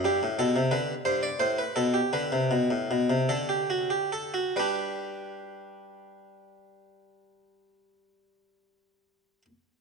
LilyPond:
<<
  \new Staff \with { instrumentName = "Harpsichord" } { \time 6/8 \key g \major \tempo 4. = 45 g'8 a'8 b'8 c''16 d''16 c''16 b'16 a'16 g'16 | b'4. a'16 g'16 fis'16 g'16 a'16 fis'16 | <d' g' b'>2.~ | <d' g' b'>2. | }
  \new Staff \with { instrumentName = "Harpsichord" } { \clef bass \time 6/8 \key g \major g,16 a,16 b,16 c16 d8 g,8 a,8 b,8 | d16 c16 b,16 a,16 b,16 c16 d4. | g2.~ | g2. | }
>>